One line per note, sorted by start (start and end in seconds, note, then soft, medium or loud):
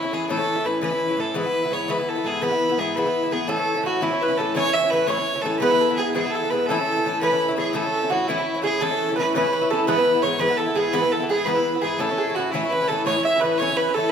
0.00 0.15 E4 medium
0.00 0.12 E4 medium
0.04 0.12 E3 soft
0.04 0.12 C#4 soft
0.11 0.28 A2 medium
0.11 0.29 E3 medium
0.11 0.29 C#4 medium
0.11 0.29 E4 medium
0.11 0.29 G#4 medium
0.29 0.39 A2 medium
0.29 0.39 E3 medium
0.29 0.38 C#4 medium
0.29 0.36 E4 medium
0.29 0.67 A4 loud
0.37 0.57 E3 soft
0.37 0.56 C#4 soft
0.37 0.54 E4 soft
0.55 0.64 E3 soft
0.55 0.65 C#4 soft
0.55 0.65 E4 medium
0.65 0.80 A2 medium
0.65 0.81 E3 medium
0.65 0.82 C#4 soft
0.65 0.83 E4 medium
0.65 0.82 B4 medium
0.81 0.92 A2 medium
0.81 0.92 E3 medium
0.81 0.91 C#4 medium
0.81 0.89 E4 medium
0.81 1.22 B4 medium
0.90 1.10 E3 soft
0.90 1.09 C#4 soft
0.90 1.07 E4 medium
1.08 1.17 E3 soft
1.08 1.18 C#4 soft
1.08 1.18 E4 medium
1.17 1.34 A2 medium
1.17 1.34 E3 soft
1.17 1.35 C#4 medium
1.17 1.35 E4 medium
1.17 1.37 A4 medium
1.34 1.45 G#2 medium
1.34 1.45 E3 medium
1.34 1.44 B3 medium
1.34 1.43 E4 medium
1.34 1.74 B4 loud
1.44 1.64 E3 soft
1.44 1.63 B3 soft
1.44 1.61 E4 soft
1.62 1.71 E3 soft
1.62 1.71 B3 soft
1.62 1.72 E4 medium
1.70 1.87 G#2 medium
1.70 1.88 E3 medium
1.70 1.88 B3 medium
1.70 1.88 E4 medium
1.70 1.92 C#5 medium
1.88 1.98 G#2 medium
1.88 1.99 E3 medium
1.88 1.99 B3 medium
1.88 1.97 E4 medium
1.88 2.11 B4 medium
1.98 2.17 E3 soft
1.98 2.16 B3 soft
1.98 2.14 E4 soft
2.09 2.28 A4 medium
2.15 2.25 E3 soft
2.15 2.25 B3 soft
2.15 2.25 E4 medium
2.24 2.40 G#2 medium
2.24 2.41 E3 medium
2.24 2.42 B3 medium
2.24 2.42 E4 medium
2.24 2.44 G#4 medium
2.41 2.52 G#2 medium
2.41 2.52 E3 medium
2.41 2.50 B3 medium
2.41 2.49 E4 medium
2.41 2.81 B4 loud
2.50 2.71 E3 soft
2.50 2.70 B3 medium
2.50 2.68 E4 soft
2.69 2.77 E3 soft
2.69 2.79 B3 soft
2.69 2.78 E4 medium
2.78 2.96 G#2 medium
2.78 2.96 E3 medium
2.78 2.97 B3 medium
2.78 2.97 E4 medium
2.78 2.98 G#4 medium
2.96 3.06 G#2 medium
2.96 3.06 E3 medium
2.96 3.06 B3 medium
2.96 3.04 E4 medium
2.96 3.34 B4 loud
3.05 3.24 E3 soft
3.05 3.24 B3 soft
3.05 3.22 E4 soft
3.23 3.30 E3 soft
3.23 3.32 B3 soft
3.23 3.32 E4 medium
3.31 3.47 G#2 soft
3.31 3.47 E3 medium
3.31 3.48 B3 medium
3.31 3.48 E4 medium
3.31 3.50 G#4 medium
3.47 3.58 A2 medium
3.47 3.58 E3 medium
3.47 3.58 C#4 medium
3.47 3.55 E4 medium
3.47 3.85 A4 loud
3.47 3.86 A4 medium
3.57 3.76 E3 soft
3.57 3.75 C#4 soft
3.57 3.74 E4 soft
3.75 3.82 E3 soft
3.75 3.84 C#4 medium
3.75 3.84 E4 medium
3.83 4.00 A2 medium
3.83 4.01 E3 medium
3.83 4.01 C#4 medium
3.83 4.02 E4 medium
3.83 4.05 F#4 medium
3.83 4.02 F#4 medium
4.01 4.11 A2 medium
4.01 4.12 E3 medium
4.01 4.11 C#4 medium
4.01 4.09 E4 medium
4.01 4.23 E4 medium
4.01 4.20 E4 medium
4.11 4.30 E3 soft
4.11 4.29 C#4 soft
4.11 4.27 E4 soft
4.22 4.40 B4 medium
4.22 4.39 B4 medium
4.28 4.37 E3 soft
4.28 4.37 C#4 soft
4.28 4.38 E4 medium
4.37 4.53 A2 medium
4.37 4.54 E3 soft
4.37 4.55 C#4 medium
4.37 4.56 E4 soft
4.37 4.56 A4 medium
4.37 4.55 A4 medium
4.55 4.65 A2 medium
4.55 4.65 E3 medium
4.55 4.65 C#4 medium
4.55 4.63 E4 medium
4.55 4.75 C#5 loud
4.55 4.74 C#5 loud
4.64 4.84 E3 soft
4.64 4.83 C#4 soft
4.64 4.81 E4 soft
4.74 4.92 E5 medium
4.74 4.90 E5 medium
4.82 4.91 E3 soft
4.82 4.92 C#4 soft
4.82 4.91 E4 soft
4.90 5.06 A2 soft
4.90 5.06 E3 medium
4.90 5.07 C#4 medium
4.90 5.08 E4 medium
4.90 5.09 B4 medium
5.07 5.18 A2 medium
5.07 5.18 E3 medium
5.07 5.17 C#4 medium
5.07 5.16 E4 medium
5.07 5.43 C#5 loud
5.07 5.43 C#5 medium
5.17 5.36 E3 soft
5.17 5.34 C#4 soft
5.17 5.33 E4 medium
5.34 5.44 E3 soft
5.34 5.44 C#4 soft
5.34 5.44 E4 medium
5.42 5.59 A2 medium
5.42 5.59 E3 medium
5.42 5.61 C#4 medium
5.42 5.59 A4 medium
5.42 5.61 A4 medium
5.46 5.61 E4 medium
5.60 5.70 G#2 medium
5.60 5.71 E3 medium
5.60 5.71 B3 medium
5.60 5.69 E4 medium
5.60 5.94 B4 loud
5.60 5.80 B4 medium
5.70 5.90 E3 soft
5.70 5.89 B3 soft
5.70 5.88 E4 soft
5.81 5.97 A4 medium
5.89 5.97 E3 soft
5.89 5.98 B3 medium
5.89 5.98 E4 medium
5.96 6.13 G#2 medium
5.96 6.14 E3 medium
5.96 6.15 B3 medium
5.96 6.13 G#4 medium
5.96 6.14 G#4 medium
6.00 6.15 E4 soft
6.14 6.24 G#2 medium
6.14 6.25 E3 medium
6.14 6.25 B3 medium
6.14 6.24 E4 medium
6.14 6.32 G#4 medium
6.14 6.33 G#4 medium
6.25 6.44 E3 soft
6.25 6.43 B3 soft
6.25 6.42 E4 medium
6.31 6.52 A4 loud
6.35 6.50 A4 medium
6.43 6.51 E3 soft
6.43 6.52 B3 soft
6.43 6.52 E4 soft
6.50 6.68 G#2 soft
6.50 6.69 E3 medium
6.50 6.70 B3 medium
6.50 6.70 E4 soft
6.50 6.68 B4 medium
6.50 6.67 B4 medium
6.66 6.78 A2 medium
6.66 6.79 E3 medium
6.66 7.21 A4 loud
6.66 7.54 A4 medium
6.70 6.79 C#4 medium
6.70 6.77 E4 loud
6.78 6.98 E3 soft
6.78 6.96 C#4 soft
6.78 6.95 E4 soft
6.96 7.05 E3 soft
6.96 7.05 C#4 soft
6.96 7.05 E4 soft
7.05 7.20 A2 soft
7.05 7.21 E3 medium
7.05 7.22 C#4 medium
7.05 7.22 E4 medium
7.21 7.31 A2 medium
7.21 7.31 E3 medium
7.21 7.31 C#4 medium
7.21 7.29 E4 medium
7.21 7.55 B4 loud
7.21 7.56 B4 medium
7.30 7.50 E3 medium
7.30 7.49 C#4 medium
7.30 7.47 E4 soft
7.48 7.57 E3 soft
7.48 7.57 C#4 soft
7.48 7.57 E4 medium
7.57 7.72 A2 medium
7.57 7.73 E3 medium
7.57 7.73 C#4 medium
7.57 7.74 E4 medium
7.57 7.74 G#4 medium
7.57 7.78 G#4 medium
7.73 7.83 A2 medium
7.73 7.84 E3 medium
7.73 7.84 C#4 medium
7.73 7.83 E4 medium
7.73 8.08 A4 medium
7.73 8.14 A4 medium
7.84 8.03 E3 soft
7.84 8.03 C#4 soft
7.84 8.01 E4 soft
8.02 8.09 E3 soft
8.02 8.10 C#4 soft
8.02 8.11 E4 medium
8.10 8.27 A2 soft
8.10 8.28 E3 medium
8.10 8.28 C#4 medium
8.10 8.29 E4 medium
8.10 8.26 F#4 medium
8.10 8.30 F#4 medium
8.28 8.38 A2 medium
8.28 8.38 E3 medium
8.28 8.38 C#4 medium
8.28 8.63 E4 medium
8.28 8.62 E4 medium
8.28 8.37 E4 medium
8.38 8.56 E3 soft
8.38 8.54 C#4 soft
8.38 8.53 E4 medium
8.54 8.63 E3 soft
8.54 8.63 C#4 soft
8.54 8.64 E4 medium
8.62 8.80 A2 medium
8.62 8.80 E3 medium
8.62 8.81 C#4 medium
8.62 8.81 E4 medium
8.62 8.81 G#4 medium
8.62 8.83 G#4 medium
8.80 8.90 A2 medium
8.80 8.91 E3 medium
8.80 8.90 C#4 medium
8.80 8.89 E4 medium
8.80 9.14 A4 medium
8.80 9.18 A4 loud
8.90 9.10 E3 soft
8.90 9.09 C#4 soft
8.90 9.07 E4 soft
9.08 9.17 E3 soft
9.08 9.18 C#4 medium
9.08 9.17 E4 medium
9.16 9.34 A2 soft
9.16 9.35 E3 medium
9.16 9.35 C#4 medium
9.16 9.32 B4 medium
9.16 9.34 B4 medium
9.20 9.36 E4 medium
9.34 9.44 A2 medium
9.34 9.45 E3 medium
9.34 9.44 C#4 medium
9.34 9.43 E4 medium
9.34 9.72 B4 medium
9.34 9.52 B4 medium
9.44 9.62 E3 soft
9.44 9.62 C#4 soft
9.44 9.60 E4 soft
9.53 9.70 B4 medium
9.61 9.70 E3 soft
9.61 9.71 C#4 soft
9.61 9.70 E4 medium
9.70 9.87 A2 medium
9.70 9.87 E3 medium
9.70 9.88 C#4 medium
9.70 9.89 E4 medium
9.70 9.85 A4 medium
9.70 9.88 A4 medium
9.86 9.97 G#2 medium
9.86 9.97 E3 medium
9.86 9.97 B3 medium
9.86 9.96 E4 medium
9.86 10.24 B4 loud
9.86 10.21 B4 medium
9.98 10.15 E3 soft
9.98 10.14 B3 soft
9.98 10.12 E4 soft
10.14 10.23 E3 soft
10.14 10.24 B3 soft
10.14 10.23 E4 medium
10.22 10.37 G#2 medium
10.22 10.38 E3 medium
10.22 10.39 B3 medium
10.22 10.40 E4 medium
10.22 10.42 C#5 medium
10.22 10.39 C#5 medium
10.38 10.49 G#2 medium
10.38 10.49 E3 medium
10.38 10.48 B3 medium
10.38 10.47 E4 medium
10.38 10.59 B4 loud
10.38 10.58 B4 medium
10.48 10.68 E3 soft
10.48 10.67 B3 soft
10.48 10.65 E4 medium
10.57 10.78 A4 medium
10.57 10.75 A4 medium
10.66 10.75 E3 soft
10.66 10.76 B3 soft
10.66 10.76 E4 medium
10.75 10.92 G#2 medium
10.75 10.92 E3 soft
10.75 10.93 B3 medium
10.75 10.93 E4 medium
10.75 10.92 G#4 medium
10.75 10.95 G#4 medium
10.93 11.03 G#2 medium
10.93 11.03 E3 medium
10.93 11.03 B3 medium
10.93 11.01 E4 medium
10.93 11.12 B4 medium
10.93 11.13 B4 loud
11.02 11.22 E3 soft
11.02 11.21 B3 soft
11.02 11.18 E4 soft
11.12 11.28 A4 medium
11.12 11.29 A4 medium
11.20 11.29 E3 soft
11.20 11.30 B3 soft
11.20 11.29 E4 medium
11.28 11.45 G#2 medium
11.28 11.46 E3 medium
11.28 11.47 B3 soft
11.28 11.47 E4 medium
11.28 11.47 G#4 medium
11.28 11.46 G#4 medium
11.45 11.56 G#2 medium
11.45 11.56 E3 medium
11.45 11.56 B3 medium
11.45 11.54 E4 medium
11.45 11.81 B4 medium
11.45 11.80 B4 medium
11.55 11.75 E3 soft
11.55 11.74 B3 soft
11.55 11.72 E4 soft
11.73 11.82 E3 soft
11.73 11.83 B3 soft
11.73 11.82 E4 soft
11.81 11.98 G#2 medium
11.81 11.98 E3 medium
11.81 12.00 B3 medium
11.81 11.98 G#4 medium
11.81 12.02 G#4 medium
11.86 12.00 E4 medium
11.99 12.09 A2 medium
11.99 12.09 E3 medium
11.99 12.09 C#4 medium
11.99 12.08 E4 medium
11.99 12.19 A4 medium
11.99 12.37 A4 medium
12.09 12.29 E3 soft
12.09 12.28 C#4 soft
12.09 12.26 E4 soft
12.18 12.34 G#4 medium
12.27 12.36 E3 soft
12.27 12.37 C#4 soft
12.27 12.36 E4 medium
12.35 12.53 A2 medium
12.35 12.53 E3 soft
12.35 12.53 C#4 medium
12.35 12.53 F#4 medium
12.35 12.52 F#4 medium
12.39 12.54 E4 medium
12.52 12.63 A2 medium
12.52 12.63 E3 medium
12.52 12.63 C#4 medium
12.52 12.72 E4 medium
12.52 12.70 E4 medium
12.52 12.62 E4 medium
12.63 12.82 E3 soft
12.63 12.81 C#4 soft
12.63 12.80 E4 medium
12.70 12.89 B4 loud
12.70 12.88 B4 medium
12.81 12.90 E3 soft
12.81 12.90 C#4 soft
12.81 12.89 E4 medium
12.88 13.05 A2 soft
12.88 13.05 E3 medium
12.88 13.06 C#4 medium
12.88 13.05 A4 medium
12.88 13.06 A4 medium
12.92 13.07 E4 medium
13.06 13.15 A2 medium
13.06 13.16 E3 medium
13.06 13.16 C#4 medium
13.06 13.15 E4 medium
13.06 13.23 C#5 loud
13.06 13.26 C#5 medium
13.16 13.35 E3 soft
13.16 13.35 C#4 soft
13.16 13.33 E4 medium
13.25 13.42 E5 medium
13.34 13.42 E3 soft
13.34 13.43 C#4 medium
13.34 13.42 E4 soft
13.40 13.58 A2 soft
13.40 13.60 E3 medium
13.40 13.59 B4 medium
13.40 13.57 B4 medium
13.44 13.60 C#4 medium
13.44 13.61 E4 medium
13.58 13.69 A2 medium
13.58 13.69 E3 medium
13.58 13.70 C#4 medium
13.58 13.79 C#5 loud
13.58 13.76 C#5 medium
13.62 13.68 E4 medium
13.69 13.88 E3 soft
13.69 13.88 C#4 soft
13.69 13.86 E4 medium
13.76 13.94 B4 medium
13.76 13.96 B4 medium
13.87 13.96 E3 soft
13.87 13.96 C#4 soft
13.87 13.95 E4 medium
13.94 14.11 A2 medium
13.94 14.12 E3 medium
13.94 14.12 A4 medium
13.94 14.11 A4 loud
13.98 14.12 C#4 medium
13.98 14.12 E4 medium